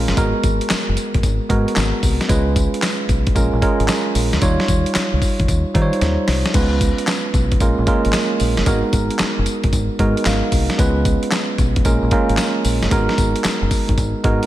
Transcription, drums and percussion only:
0.08 snare, closed hi-hat
0.17 kick, closed hi-hat, tambourine
0.44 kick, closed hi-hat, tambourine
0.61 closed hi-hat
0.70 snare, clap, closed hi-hat, tambourine
0.97 closed hi-hat, tambourine
1.14 kick, closed hi-hat
1.23 kick, closed hi-hat, tambourine
1.50 kick, closed hi-hat
1.68 closed hi-hat
1.76 snare, clap, closed hi-hat, tambourine
2.03 kick, open hi-hat, tambourine
2.21 snare, closed hi-hat
2.29 kick, closed hi-hat, tambourine
2.56 kick, closed hi-hat, tambourine
2.74 closed hi-hat
2.82 snare, clap, closed hi-hat, tambourine
3.09 kick, closed hi-hat, tambourine
3.27 kick, closed hi-hat
3.36 kick, closed hi-hat, tambourine
3.62 kick, closed hi-hat
3.80 closed hi-hat
3.88 snare, clap, closed hi-hat, tambourine
4.15 open hi-hat, tambourine
4.33 snare, closed hi-hat
4.42 kick, closed hi-hat, tambourine
4.60 snare
4.68 kick, closed hi-hat, tambourine
4.86 closed hi-hat
4.95 snare, clap, closed hi-hat, tambourine
5.22 kick, open hi-hat, tambourine
5.40 kick, closed hi-hat
5.48 kick, closed hi-hat, tambourine
5.75 kick, closed hi-hat
5.93 closed hi-hat
6.01 snare, closed hi-hat
6.28 snare, open hi-hat
6.46 snare, closed hi-hat
6.54 kick, closed hi-hat, crash, tambourine
6.81 kick, closed hi-hat, tambourine
6.98 closed hi-hat
7.07 snare, clap, closed hi-hat, tambourine
7.34 kick, closed hi-hat, tambourine
7.52 kick, closed hi-hat
7.60 kick, closed hi-hat, tambourine
7.87 kick, closed hi-hat
8.05 closed hi-hat
8.13 snare, clap, closed hi-hat, tambourine
8.40 open hi-hat, tambourine
8.57 snare, closed hi-hat
8.66 kick, closed hi-hat, tambourine
8.93 kick, closed hi-hat, tambourine
9.11 closed hi-hat
9.19 snare, clap, closed hi-hat, tambourine
9.46 closed hi-hat, tambourine
9.64 kick, closed hi-hat
9.73 kick, closed hi-hat, tambourine
9.99 kick, closed hi-hat
10.17 closed hi-hat
10.25 snare, clap, closed hi-hat, tambourine
10.52 kick, open hi-hat, tambourine
10.70 snare, closed hi-hat
10.79 kick, closed hi-hat, tambourine
11.05 kick, closed hi-hat, tambourine
11.23 closed hi-hat
11.31 snare, clap, closed hi-hat, tambourine
11.58 kick, closed hi-hat, tambourine
11.76 kick, closed hi-hat
11.85 kick, closed hi-hat, tambourine
12.11 kick, closed hi-hat
12.29 closed hi-hat
12.37 snare, clap, closed hi-hat, tambourine
12.65 open hi-hat, tambourine
12.83 snare, closed hi-hat
12.91 kick, closed hi-hat, tambourine
13.09 snare
13.18 kick, closed hi-hat, tambourine
13.36 closed hi-hat
13.44 snare, clap, closed hi-hat, tambourine
13.71 kick, open hi-hat, tambourine
13.89 kick, closed hi-hat
13.98 kick, closed hi-hat, tambourine
14.24 kick, closed hi-hat
14.43 closed hi-hat

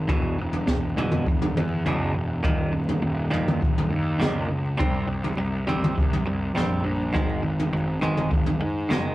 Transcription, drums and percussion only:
0.09 kick, floor tom
0.53 floor tom
0.67 kick, snare
0.98 floor tom
1.11 mid tom
1.26 kick
1.42 floor tom
1.57 mid tom
1.86 floor tom
2.44 kick, floor tom
2.89 floor tom
3.33 floor tom
3.48 mid tom
3.62 kick
3.78 floor tom
4.21 snare, floor tom
4.80 kick, floor tom
5.24 floor tom
5.69 floor tom
5.84 mid tom
5.98 kick
6.13 floor tom
6.57 snare, floor tom
7.15 kick, floor tom
7.60 floor tom
8.03 floor tom
8.17 mid tom
8.31 kick
8.46 floor tom
8.91 snare, floor tom

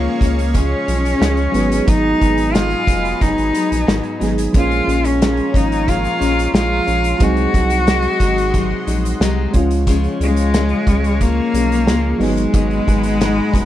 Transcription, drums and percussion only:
0.21 kick, closed hi-hat
0.39 closed hi-hat
0.54 kick, closed hi-hat
0.88 closed hi-hat
1.05 closed hi-hat
1.22 snare, closed hi-hat
1.37 closed hi-hat
1.54 snare, closed hi-hat
1.72 closed hi-hat
1.88 kick, closed hi-hat
2.21 kick, closed hi-hat
2.38 closed hi-hat
2.55 snare, closed hi-hat
2.70 closed hi-hat
2.87 kick, closed hi-hat
3.05 closed hi-hat
3.21 kick, closed hi-hat
3.38 closed hi-hat
3.55 closed hi-hat
3.72 closed hi-hat
3.88 snare, closed hi-hat
4.04 closed hi-hat
4.21 snare, closed hi-hat
4.38 closed hi-hat
4.54 kick, closed hi-hat
4.71 closed hi-hat
4.89 closed hi-hat
5.05 closed hi-hat
5.22 snare, closed hi-hat
5.37 closed hi-hat
5.54 kick, closed hi-hat
5.72 closed hi-hat
5.88 kick, closed hi-hat
6.04 closed hi-hat
6.21 closed hi-hat
6.39 closed hi-hat
6.55 snare, closed hi-hat
6.88 closed hi-hat
7.04 closed hi-hat
7.20 kick, closed hi-hat
7.37 closed hi-hat
7.54 kick, closed hi-hat
7.70 closed hi-hat
7.87 snare, closed hi-hat
8.02 closed hi-hat
8.20 kick, closed hi-hat
8.38 closed hi-hat
8.54 kick, closed hi-hat
8.87 closed hi-hat
9.05 closed hi-hat
9.21 snare, closed hi-hat
9.54 kick, closed hi-hat
9.71 closed hi-hat
9.87 kick, closed hi-hat
10.04 closed hi-hat
10.21 closed hi-hat
10.36 closed hi-hat
10.54 snare, closed hi-hat
10.69 closed hi-hat
10.87 kick, closed hi-hat
11.04 closed hi-hat
11.21 kick, closed hi-hat
11.54 closed hi-hat
11.72 closed hi-hat
11.87 snare, closed hi-hat
12.21 snare, open hi-hat
12.37 closed hi-hat
12.54 kick, closed hi-hat
12.71 closed hi-hat
12.88 kick, closed hi-hat
13.03 closed hi-hat
13.21 snare, closed hi-hat
13.54 kick, closed hi-hat

